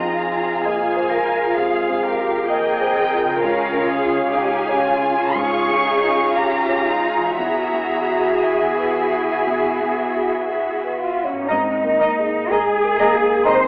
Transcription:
Already playing: grand piano F2, harp F2 C4 D#4 F4, viola section C4 F4, cello section F4, violin section G#4 D#5 A#5
0.03 grand piano C4
0.19 violin section F5
0.35 grand piano F4
0.64 viola section A#3, cello section G#4, grand piano D#5, violin section G#5
0.96 grand piano C5
1.11 viola section G#3, cello section A#4
1.27 grand piano F4
1.55 grand piano C3, viola section G#3, violin section G#4 F5, cello section G#4
1.89 grand piano C4
2.03 cello section G4, violin section A#4
2.19 grand piano F4
2.48 viola section A#3 G5, cello section G#4, grand piano D#5, violin section D#5
2.52 violin section A#4
2.81 grand piano C5
2.95 viola section C4, violin section G5
3.13 grand piano F4
3.24 harp C#3
3.28 harp C#4
3.33 harp F4
3.40 grand piano C#2, viola section C#4 F4, violin section G#4 C#5 F5, cello section A#4
3.74 grand piano C#4
3.88 cello section G#4, violin section G#4
4.06 grand piano F4
4.34 viola section C#4 D#4, cello section G4, violin section F5 G#5, grand piano F5
4.69 grand piano C#5
4.82 viola section C#4, cello section F4
5.03 grand piano F4
5.34 grand piano G#2, viola section F4, cello section G#4, violin section F5 C#6
5.69 grand piano C#4
5.85 viola section D#4
6.02 grand piano F4
6.34 viola section C#4 F4, cello section G4, grand piano F5, violin section A#5
6.69 grand piano C#5
6.85 viola section D#4, cello section F4
7.03 grand piano F4
7.18 harp E3
7.23 harp B3
7.28 harp E4
7.32 harp F#4, violin section A#5
7.38 grand piano E2, viola section E4 F#4, violin section F#4 E5, cello section G#4
7.73 grand piano B3
8.07 grand piano F#4
8.40 grand piano E5, violin section G#5
8.78 grand piano B4
9.13 grand piano F#4
9.47 grand piano B2
9.81 grand piano B3
10.15 grand piano F#4
10.49 grand piano E5
10.84 grand piano B4
10.98 cello section F4, flute F5
11.17 grand piano F#4
11.24 cello section C#4, flute C#5
11.32 harp G#2
11.36 harp A#3
11.41 harp D#4
11.48 double bass section G#1, grand piano G#2, viola section A#3, french horn section C4, cello section D#4, flute D#5, violin section D#5, clarinet D#5, oboe A#5
11.84 grand piano A#3
11.99 double bass section G#1, viola section A#3, french horn section A#3, violin section D#5, clarinet D#5, oboe A#5
12.19 grand piano G#4
12.50 double bass section G#1, french horn section G#3, viola section A#3, cello section G#4, grand piano D#5, violin section D#5, clarinet D#5, flute G#5, oboe A#5
12.84 grand piano A#4
12.96 double bass section G#1, french horn section A#3, viola section A#3, violin section D#5, clarinet D#5, oboe A#5
13.15 grand piano G#4
13.43 double bass section G#1, grand piano D#3, viola section A#3, french horn section C4, cello section C5, violin section D#5, clarinet D#5, oboe A#5, flute C6

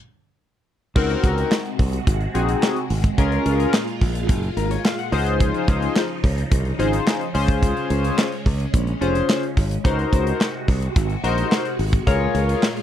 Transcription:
0.95 fingered electric bass C#2, string machine C3 G#3 F#4, analog polysynth C4 D#4 F#4 A#4, kick, crash
1.10 closed hi-hat
1.24 fingered electric bass C#2, kick, closed hi-hat
1.38 closed hi-hat
1.52 snare, clap
1.66 closed hi-hat
1.79 fingered electric bass C2, kick, open hi-hat
1.93 closed hi-hat
2.07 fingered electric bass G#1, kick, closed hi-hat
2.21 closed hi-hat
2.34 fingered electric bass A#1, analog polysynth C4 D#4 F#4 G#4, closed hi-hat
2.49 closed hi-hat
2.63 snare, clap
2.76 closed hi-hat
2.90 fingered electric bass G#1, open hi-hat
3.04 kick, closed hi-hat
3.18 fingered electric bass C#2, string machine A#2 F4, analog polysynth C#4 F4 G#4 A#4, kick, closed hi-hat
3.32 closed hi-hat
3.46 fingered electric bass C#2, closed hi-hat
3.60 closed hi-hat
3.74 snare, clap
3.88 closed hi-hat
4.01 fingered electric bass A#1, kick, open hi-hat
4.15 closed hi-hat
4.29 fingered electric bass F#1, kick, closed hi-hat
4.43 closed hi-hat
4.57 fingered electric bass G#1, analog polysynth A#4, closed hi-hat
4.71 analog polysynth C#5, closed hi-hat
4.85 analog polysynth F5, snare, clap
4.98 analog polysynth F#5, closed hi-hat
5.12 fingered electric bass C#2, string machine C#3 F3 D#4, analog polysynth D#4 F4 G#4 C5, open hi-hat
5.27 closed hi-hat
5.40 kick, closed hi-hat
5.54 closed hi-hat
5.68 fingered electric bass C#2, kick, closed hi-hat
5.82 closed hi-hat
5.96 snare, clap
6.24 fingered electric bass C#2, kick, open hi-hat
6.38 closed hi-hat
6.52 fingered electric bass C2, kick, closed hi-hat
6.65 closed hi-hat
6.79 fingered electric bass G#1, analog polysynth D#4 F4 G#4 C5, closed hi-hat
6.93 closed hi-hat
7.07 snare, clap
7.21 closed hi-hat
7.34 fingered electric bass C#2, string machine G#3 C#4, analog polysynth C#4 F4 G#4 C5, open hi-hat
7.48 kick, closed hi-hat
7.63 kick, closed hi-hat
7.77 closed hi-hat
7.90 fingered electric bass C#2, closed hi-hat
8.04 closed hi-hat
8.18 snare, clap
8.32 closed hi-hat
8.46 fingered electric bass C#2, kick, open hi-hat
8.60 closed hi-hat
8.74 fingered electric bass A#1, kick, closed hi-hat
8.87 closed hi-hat
9.01 fingered electric bass F1, analog polysynth C#4 F4 G#4 C5, closed hi-hat
9.15 closed hi-hat
9.29 snare, clap
9.43 closed hi-hat
9.57 fingered electric bass G#1, kick, open hi-hat
9.71 closed hi-hat
9.84 fingered electric bass C#2, string machine C3 G#3 F#4, analog polysynth D#4 F#4 A#4 C5, kick, closed hi-hat
9.99 closed hi-hat
10.13 fingered electric bass C#2, kick, closed hi-hat
10.27 closed hi-hat
10.41 snare, clap
10.68 fingered electric bass C2, kick, open hi-hat
10.82 closed hi-hat
10.96 fingered electric bass G#1, kick, closed hi-hat
11.10 closed hi-hat
11.23 fingered electric bass A#1, analog polysynth D#4 F#4 A#4 C5, closed hi-hat
11.38 closed hi-hat
11.52 snare, clap
11.65 closed hi-hat
11.79 fingered electric bass G#1, open hi-hat
11.93 kick, closed hi-hat
12.07 fingered electric bass C#2, string machine A#2 F4, analog polysynth F4 G#4 A#4 C#5, kick, closed hi-hat
12.34 fingered electric bass C#2, closed hi-hat
12.49 closed hi-hat
12.63 snare, clap
12.77 closed hi-hat

